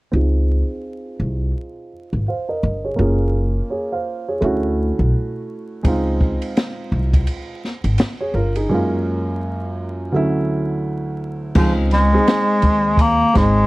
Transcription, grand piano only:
0.12 C4 D#4 F4
0.16 G#4
2.28 C5 F5
2.49 A#4 D#5
2.85 G#4 C#5
2.96 A#3 C#4 F4
3.01 G#4
3.70 G#4 C#5
3.92 C5 F5
4.28 G#4 C#5
4.41 A3 C#4 E4
4.45 F#4
5.83 G#3 C4 D#4
5.88 F4
8.21 G#4 C#5
8.35 F4 A#4
8.56 D#4 G#4
8.69 F#2 G#3 A#3 C#4
8.74 F4
10.12 D2 F#3 A3 C#4
10.16 E4
11.55 G#3 C4 D#4 F4
12.13 G#3 C4 D#4 G#4
13.34 G#3 C4 D#4 G#4

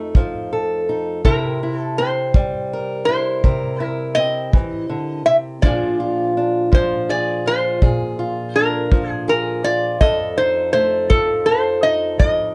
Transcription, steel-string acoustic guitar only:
Already playing: F2 F3 A3 D#4 A4
0.16 F3
0.53 A4
0.89 D#4
1.25 C3 E4
1.63 E4
1.99 C4
2.35 G3
2.73 A#4
3.09 E4
3.44 C3 A#4
3.80 E4
4.17 C4
4.54 E3
4.89 D3
5.26 C3
5.63 A#2 F3 D4 F4 G#4
6.00 F4
6.37 D4
6.72 F3
7.09 G#4
7.46 F4
7.82 A#2 G#4
8.19 F4
8.56 D4
8.91 F3
9.28 G#4
9.64 F4
10.00 F2 A4
10.38 D#4
10.74 A3
11.10 F3
11.48 A4
11.84 D#4
12.20 F2

